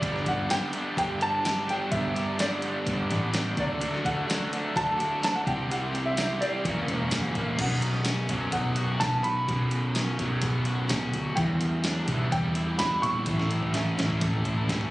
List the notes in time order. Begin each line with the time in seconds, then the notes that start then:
Already playing: D5
0.00 G1 G2 D3 G3 B3 D4 G4, kick, closed hi-hat
0.16 snare
0.24 G1 G3 B3 D4 G4 F#5, kick, closed hi-hat
0.48 G2 D3 G3 B3 D4 G4 G5, snare, closed hi-hat, tambourine
0.73 G3 B3 D4, closed hi-hat
0.97 G1 G2 D3 G3 B3 D4 G5, kick, closed hi-hat
1.19 G3 B3 D4 G4 A5, closed hi-hat
1.42 G3 B3 D4 G4, closed hi-hat, tambourine
1.46 snare
1.67 G3 B3 D4 G4 G5, closed hi-hat
1.90 G1 G2 D3 G3 B3 D4 G4 E5, kick, closed hi-hat
2.14 G3 B3 D4 G4, closed hi-hat
2.38 G2 D3 G3 B3 D4 G4 D5, snare, closed hi-hat, tambourine
2.62 G3 B3 D4, closed hi-hat
2.86 G1 G2 D3 G3 B3 D4, kick, closed hi-hat
3.10 A1 G3 B3 D4 G4, snare, closed hi-hat
3.33 G3 B3 D4 G4, snare, closed hi-hat, tambourine
3.57 D2 D3 F#3 A3 D4 F#4 D5, kick, closed hi-hat
3.80 D2 D3 F#3 A3 D4 F#4, closed hi-hat
3.94 snare
4.04 D2 F#3 A3 D4 F#4 F#5, kick, closed hi-hat
4.28 D3 F#3 A3 D4 F#4, snare, closed hi-hat, tambourine
4.53 F#3 A3 D4, closed hi-hat
4.75 D2 D3 F#3 A3 D4 A5, kick, closed hi-hat
4.97 F#3 A3 D4 F#4, closed hi-hat
5.21 D3 A3 D4 F#4 A5, snare, closed hi-hat, tambourine
5.35 F#5
5.44 C2 C3 E3 G3 C4 E4 G4 G5, kick, closed hi-hat
5.68 C3 E3 G3 C4 E4 G4 F#5, closed hi-hat
5.93 G3 C4 E4 G4, closed hi-hat
6.06 E5
6.16 C3 E3 G3 C4 E4 G4, snare, closed hi-hat, tambourine
6.41 G3 C4 E4 D5, closed hi-hat
6.63 F#1 F#2 C#3 E3 A#3 C#4 F#4, kick, closed hi-hat
6.88 E1 E3 A#3 C#4 F#4, closed hi-hat
7.11 F#1 E3 A#3 C#4 F#4, snare, closed hi-hat, tambourine
7.35 A#1 E3 A#3 C#4 F#4, kick, closed hi-hat
7.59 B1 B2 F#3 B3 C#4 F#5, kick, closed hi-hat, crash
7.82 closed hi-hat
7.94 snare
8.05 C#4, snare, closed hi-hat, tambourine
8.29 F#2 B2 F#3 B3 C#4, kick, closed hi-hat
8.52 B1 B3 F#5, kick, closed hi-hat
8.76 F#4, closed hi-hat
9.00 B1 C#4 A5, kick, snare, closed hi-hat, tambourine
9.23 B1 F#4 B5, closed hi-hat
9.47 B1 B2 F#3 B3, kick, closed hi-hat
9.51 C#4
9.71 closed hi-hat
9.95 C#4, snare, closed hi-hat, tambourine
10.19 B1 B2 F#3 B3 C#4, kick, closed hi-hat
10.42 B1 B3, kick, closed hi-hat
10.65 F#4, closed hi-hat
10.89 B2 C#4, kick, snare, closed hi-hat, tambourine
11.13 D2 F#4, closed hi-hat
11.36 E2 E3 G3 B3 E4 G5, kick, closed hi-hat
11.61 closed hi-hat
11.84 D4, snare, closed hi-hat, tambourine
12.07 B1 E3 G3 B3 E4, kick, closed hi-hat
12.32 E2 G3 G5, kick, closed hi-hat
12.55 E4, closed hi-hat
12.79 E2 D4 B5, kick, snare, closed hi-hat, tambourine
13.02 A#1 E4 C#6, closed hi-hat
13.26 A1 A2 E3 A3 C#4, kick, closed hi-hat, high tom
13.30 E4
13.39 snare
13.51 closed hi-hat
13.63 kick
13.74 C#4, snare, closed hi-hat
13.97 A1 A2 E3 A3 C#4 E4, snare, closed hi-hat
14.10 kick
14.21 A1 A3, kick, closed hi-hat
14.34 mid tom
14.45 E4, kick, closed hi-hat
14.69 A2 C#4, kick, snare, closed hi-hat
14.81 floor tom